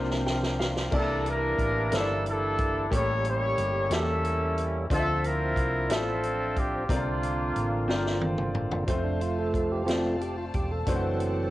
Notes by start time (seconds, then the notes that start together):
Already playing: C2 C3 F3 A#3 C4 D4 F4 C5
0.00 A#4
0.11 snare
0.26 G5, snare
0.43 snare
0.59 F5, snare
0.76 snare
0.91 C2 C3 E3 A#3 D4 E4 G4 D5 A5, kick, crash
0.96 A4
1.26 D4 E4, closed hi-hat
1.30 A#4
1.58 A1, kick, closed hi-hat
1.92 G1 A#3 E4 A4 C5, snare, closed hi-hat
2.00 D5
2.26 D4 E4 A4, closed hi-hat
2.58 kick, closed hi-hat
2.90 A1 A2 G3 A#3 C#4 E4 G4 A4 C#5, kick, closed hi-hat
3.25 E4 G4 C#5, closed hi-hat
3.58 G1, closed hi-hat
3.90 E2 A#3 C#4 E4 G4 A4 E5, snare, closed hi-hat
4.25 closed hi-hat
4.58 closed hi-hat
4.90 D2 D3 F3 C4 D4 F4 A4 C5 D#5, kick, closed hi-hat
4.99 E5
5.24 E4 F4 A#4, closed hi-hat
5.56 C2, kick, closed hi-hat
5.89 A1 F3 C4 D4 F4 A4 C5 E5, snare, closed hi-hat
6.23 closed hi-hat
6.56 G4, kick, closed hi-hat
6.89 C2 C3 D3 A#3 C4 D4 F4 A#4 D5, kick, closed hi-hat
7.23 closed hi-hat
7.56 A1, closed hi-hat
7.88 G1 C4 F4 A#4 D5, snare
8.06 snare
8.21 high tom
8.38 mid tom
8.54 mid tom
8.71 floor tom
8.86 F1 F3 A3 C4 F4 A4 C5 F5 A5, kick, closed hi-hat
9.04 D4
9.21 F4, closed hi-hat
9.39 A4
9.54 A4, kick, closed hi-hat
9.72 G4
9.86 F3 A3 C4 F4 D5, snare, closed hi-hat
10.04 F4
10.21 G4, closed hi-hat
10.38 F4
10.54 E1 G4, kick, closed hi-hat
10.71 A4
10.87 F#1 E3 F#3 A3 C4 D4 E4 C5 D5 F#5, kick, closed hi-hat
10.95 F#4
11.20 closed hi-hat